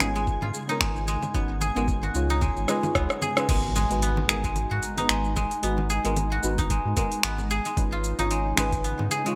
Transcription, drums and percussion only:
0.00 finger snap medium
0.00 low conga medium
0.00 shaker medium
0.15 shaker soft
0.27 kick loud
0.27 shaker soft
0.42 low conga medium
0.54 shaker medium
0.69 shaker soft
0.81 finger snap medium
0.81 kick medium
0.81 low conga medium
0.81 shaker soft
0.96 shaker soft
1.08 shaker medium
1.23 low conga medium
1.23 shaker soft
1.34 kick loud
1.34 shaker soft
1.61 low conga medium
1.61 shaker medium
1.76 shaker soft
1.88 kick loud
1.88 shaker soft
2.03 low conga medium
2.03 shaker soft
2.15 shaker medium
2.30 shaker soft
2.41 kick loud
2.41 low conga medium
2.41 shaker soft
2.57 shaker soft
2.68 cross-stick medium
2.68 shaker medium
2.83 low conga medium
2.83 shaker soft
2.95 kick medium
2.95 cross-stick medium
2.95 shaker soft
3.10 cross-stick medium
3.10 shaker soft
3.22 low conga medium
3.22 shaker medium
3.37 cross-stick medium
3.37 shaker soft
3.49 kick loud
3.49 open hi-hat medium
3.49 crash loud
3.49 shaker soft
3.76 open hi-hat soft
3.76 low conga medium
3.76 shaker medium
3.91 open hi-hat soft
3.91 shaker soft
4.02 open hi-hat medium
4.02 shaker soft
4.17 low conga medium
4.29 finger snap medium
4.29 shaker medium
4.44 kick loud
4.44 open hi-hat soft
4.44 shaker soft
4.56 open hi-hat medium
4.56 low conga medium
4.56 shaker soft
4.83 open hi-hat medium
4.83 shaker medium
4.98 open hi-hat soft
4.98 low conga medium
4.98 shaker soft
5.09 finger snap medium
5.09 open hi-hat medium
5.09 shaker soft
5.24 shaker soft
5.36 kick medium
5.36 low conga medium
5.36 shaker medium
5.51 open hi-hat soft
5.51 shaker soft
5.63 open hi-hat medium
5.63 shaker soft
5.78 low conga medium
5.90 open hi-hat soft
5.90 shaker medium
6.05 open hi-hat soft
6.05 shaker soft
6.17 open hi-hat medium
6.17 low conga medium
6.17 shaker soft
6.43 shaker medium
6.58 kick loud
6.58 open hi-hat soft
6.58 low conga medium
6.58 shaker soft
6.70 kick medium
6.70 open hi-hat soft
6.70 shaker soft
6.97 kick loud
6.97 open hi-hat medium
6.97 low conga medium
6.97 shaker medium
7.12 open hi-hat soft
7.12 shaker soft
7.23 finger snap medium
7.23 open hi-hat medium
7.23 shaker soft
7.38 low conga medium
7.38 shaker soft
7.50 shaker medium
7.65 open hi-hat soft
7.65 shaker soft
7.77 kick loud
7.77 open hi-hat medium
7.77 low conga medium
7.77 shaker soft
8.04 open hi-hat soft
8.04 shaker medium
8.19 open hi-hat soft
8.19 low conga medium
8.19 shaker soft
8.31 open hi-hat medium
8.31 shaker soft
8.57 finger snap medium
8.57 low conga medium
8.57 shaker medium
8.72 kick loud
8.72 open hi-hat soft
8.72 shaker soft
8.84 open hi-hat soft
8.84 shaker soft
8.99 low conga medium
9.11 open hi-hat medium
9.11 shaker medium
9.26 open hi-hat soft
9.26 shaker soft

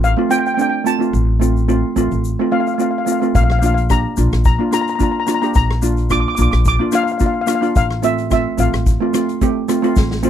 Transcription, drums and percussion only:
0.04 shaker medium
0.31 shaker loud
0.46 shaker soft
0.59 shaker medium
0.86 shaker medium
1.02 shaker soft
1.14 shaker medium
1.42 shaker medium
1.57 shaker soft
1.69 shaker medium
1.97 shaker medium
2.11 shaker soft
2.24 shaker medium
2.67 shaker soft
2.80 shaker medium
3.07 shaker loud
3.22 shaker soft
3.35 kick loud
3.35 closed hi-hat medium
3.35 shaker medium
3.50 cross-stick medium
3.63 closed hi-hat medium
3.63 shaker medium
3.77 closed hi-hat medium
3.77 shaker soft
3.90 kick medium
3.90 cross-stick medium
3.90 closed hi-hat medium
3.90 shaker medium
4.17 closed hi-hat medium
4.17 shaker medium
4.32 cross-stick medium
4.32 closed hi-hat medium
4.32 shaker soft
4.44 kick loud
4.44 closed hi-hat medium
4.44 shaker medium
4.73 cross-stick medium
4.73 closed hi-hat medium
4.73 shaker loud
4.88 closed hi-hat medium
4.88 shaker soft
5.00 kick medium
5.00 closed hi-hat medium
5.00 shaker medium
5.27 cross-stick medium
5.27 closed hi-hat medium
5.27 shaker loud
5.42 closed hi-hat medium
5.42 shaker soft
5.54 kick loud
5.54 closed hi-hat medium
5.54 shaker medium
5.71 cross-stick medium
5.82 closed hi-hat medium
5.82 shaker loud
5.97 closed hi-hat medium
5.97 shaker soft
6.10 kick medium
6.10 cross-stick medium
6.10 closed hi-hat medium
6.10 shaker medium
6.37 closed hi-hat medium
6.37 shaker loud
6.52 cross-stick medium
6.52 closed hi-hat medium
6.52 shaker soft
6.65 kick loud
6.65 closed hi-hat medium
6.65 shaker medium
6.92 cross-stick medium
6.92 closed hi-hat medium
6.92 shaker loud
7.08 closed hi-hat medium
7.08 shaker soft
7.19 kick loud
7.19 closed hi-hat medium
7.19 shaker medium
7.47 cross-stick medium
7.47 closed hi-hat medium
7.47 shaker loud
7.63 closed hi-hat medium
7.63 shaker soft
7.76 kick loud
7.76 closed hi-hat medium
7.76 shaker medium
7.91 cross-stick medium
8.03 closed hi-hat medium
8.03 shaker loud
8.18 closed hi-hat medium
8.18 shaker soft
8.31 kick medium
8.31 cross-stick medium
8.31 closed hi-hat medium
8.31 shaker medium
8.58 closed hi-hat medium
8.58 shaker loud
8.73 cross-stick loud
8.73 closed hi-hat medium
8.73 shaker soft
8.86 kick loud
8.86 closed hi-hat medium
8.86 shaker medium
9.14 cross-stick medium
9.14 closed hi-hat medium
9.14 shaker loud
9.29 closed hi-hat medium
9.29 shaker soft
9.41 kick medium
9.41 closed hi-hat medium
9.41 shaker medium
9.69 cross-stick medium
9.69 closed hi-hat medium
9.69 shaker loud
9.83 closed hi-hat medium
9.83 shaker soft
9.96 kick loud
9.96 snare medium
9.96 shaker medium
10.11 snare medium
10.23 shaker medium

